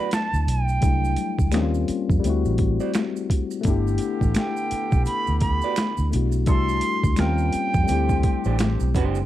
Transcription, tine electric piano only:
0.00 0.81 F#3 medium
0.00 0.76 A3 medium
0.00 0.78 B3 medium
0.00 0.79 D4 medium
0.00 0.80 E4 medium
0.81 1.50 G3 medium
0.81 1.53 A3 medium
0.81 1.54 D4 medium
0.81 1.54 E4 soft
0.86 1.55 F#3 medium
1.51 2.19 G3 medium
1.51 2.23 A#3 medium
1.51 2.23 C4 medium
1.51 2.25 C#4 medium
1.56 1.62 D#4 medium
1.63 2.29 F4 medium
2.20 3.60 G3 medium
2.20 3.60 A3 medium
2.25 3.63 C4 medium
2.25 3.64 E4 medium
2.29 3.65 F#4 medium
3.61 6.06 A3 medium
3.61 6.07 B3 medium
3.65 6.08 D4 medium
3.65 6.10 E4 medium
3.70 6.11 G4 medium
6.11 6.46 A3 soft
6.11 6.47 B3 soft
6.11 6.47 D4 soft
6.11 6.48 E4 soft
6.15 6.49 F#4 medium
6.46 7.15 G3 medium
6.46 7.18 A3 medium
6.46 7.19 D4 medium
6.46 7.19 E4 medium
6.51 7.20 F#4 medium
7.16 7.82 G3 medium
7.16 7.88 A#3 medium
7.16 7.88 C4 medium
7.16 7.90 C#4 medium
7.21 7.90 F4 medium
7.84 9.25 G3 medium
7.84 9.26 A3 medium
7.89 9.26 C4 medium
7.89 9.26 E4 medium
7.94 9.26 G4 medium

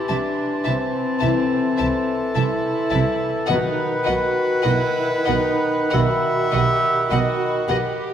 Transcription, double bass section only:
0.10 0.18 C2 medium
0.66 0.74 C2 medium
1.22 1.30 C2 medium
1.80 1.88 C2 medium
2.37 2.45 C2 medium
2.92 3.00 C2 medium
3.50 3.58 B1 medium
4.07 4.15 B1 medium
4.65 4.73 B1 medium
5.28 5.36 B1 medium
5.94 6.02 B1 medium
6.55 6.63 B1 medium
7.13 7.21 B1 medium
7.71 7.79 B1 medium

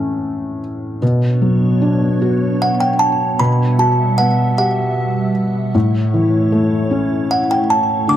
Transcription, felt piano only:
0.00 0.98 A2 medium
0.00 0.58 E3 soft
0.00 0.98 A3 soft
0.00 0.98 C#4 soft
1.02 3.36 B2 medium
1.42 2.96 F#3 soft
1.82 3.35 D4 soft
2.22 3.36 F#4 soft
3.40 5.71 B2 medium
3.79 5.32 F#4 soft
4.19 5.71 B3 soft
4.58 5.72 G4 medium
5.75 8.04 A2 medium
6.14 7.65 E3 soft
6.52 8.04 A3 soft
6.91 8.05 C#4 soft
8.08 8.17 D3 medium

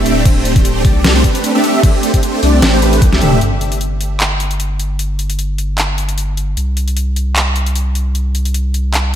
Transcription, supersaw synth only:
0.00 0.23 A3 loud
0.00 0.23 C4 medium
0.00 0.23 D4 medium
0.00 0.23 G4 medium
0.00 0.23 E5 loud
0.25 0.53 A3 medium
0.25 0.53 C4 medium
0.25 0.53 D4 medium
0.25 0.53 G4 medium
0.25 0.53 C5 medium
0.56 0.83 A3 medium
0.56 0.83 C4 medium
0.56 0.83 D4 medium
0.56 0.83 G4 medium
0.56 0.83 C5 loud
0.85 1.13 A3 medium
0.85 1.13 C4 medium
0.85 1.13 D4 medium
0.85 1.13 G4 medium
0.85 1.13 D5 loud
1.15 1.22 A3 loud
1.15 1.22 C4 medium
1.15 1.22 D4 medium
1.15 1.22 G4 medium
1.15 1.22 C5 loud
1.24 1.52 A3 medium
1.24 1.52 C4 medium
1.24 1.52 D4 medium
1.24 1.52 G4 medium
1.55 1.81 A3 loud
1.55 1.81 C4 medium
1.55 1.81 D4 medium
1.55 1.81 G4 medium
1.55 1.81 E5 loud
1.83 2.11 A3 medium
1.83 2.11 C4 medium
1.83 2.11 D4 medium
1.83 2.11 G4 medium
1.83 2.11 C5 medium
2.14 2.41 A3 medium
2.14 2.41 C4 medium
2.14 2.41 D4 medium
2.14 2.41 G4 medium
2.43 2.71 A3 medium
2.43 2.71 C4 medium
2.43 2.71 D4 medium
2.43 2.71 G4 medium
2.43 2.71 D5 medium
2.73 2.80 A3 loud
2.73 2.80 C4 medium
2.73 2.80 D4 medium
2.73 2.80 G4 medium
2.73 2.80 C5 loud
2.82 3.10 A3 medium
2.82 3.10 C4 medium
2.82 3.10 D4 medium
2.82 3.10 G4 medium
2.82 3.10 B4 medium
3.13 3.39 A3 loud
3.13 3.39 C4 medium
3.13 3.39 D4 medium
3.13 3.39 G4 medium
3.13 3.39 E5 loud

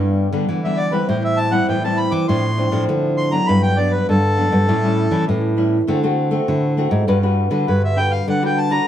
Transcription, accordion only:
0.64 0.79 E5 medium
0.77 0.92 D5 medium
0.92 1.07 B4 medium
1.09 1.23 C5 medium
1.24 1.39 E5 medium
1.37 1.52 A5 loud
1.52 1.67 F#5 medium
1.69 1.83 G5 medium
1.84 1.98 A5 medium
1.97 2.12 B5 medium
2.11 2.27 D6 medium
2.28 2.84 C6 medium
3.17 3.32 C6 medium
3.32 3.47 A#5 medium
3.47 3.62 B5 loud
3.63 3.78 G5 medium
3.77 3.92 D5 medium
3.92 4.07 B4 medium
4.09 5.25 A4 medium
7.68 7.82 B4 medium
7.85 7.98 E5 medium
7.97 8.12 G5 loud
8.12 8.27 F5 medium
8.29 8.43 F#5 medium
8.46 8.59 G5 medium
8.58 8.72 A5 medium
8.71 8.87 A#5 loud

